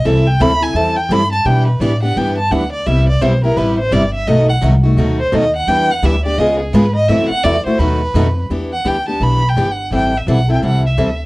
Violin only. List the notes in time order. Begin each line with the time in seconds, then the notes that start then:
0.06 E5
0.27 G5
0.42 B5
0.63 G#5
0.76 A5
0.96 G5
1.12 B5
1.33 A5
1.46 G5
1.68 B4
1.81 D5
2.03 F#5
2.17 G5
2.38 A5
2.51 F#5
2.73 D5
2.87 E5
3.09 D5
3.21 C5
3.44 A#4
3.57 B4
3.80 C5
3.93 D5
4.14 E5
4.27 D#5
4.49 F#5
5.20 C5
5.35 D#5
5.56 F#5
5.69 G5
5.91 F#5
6.05 E5
6.26 D5
6.38 D#5
6.60 G#4
6.74 B4
6.96 D#5
7.08 E5
7.29 F#5
7.44 D5
7.66 C5
7.79 B4
8.73 F#5
8.88 G5
9.09 A5
9.23 B5
9.49 G5
9.72 F#5
9.95 G5
10.18 E5
10.31 F#5
10.53 G5
10.66 F#5
10.86 E5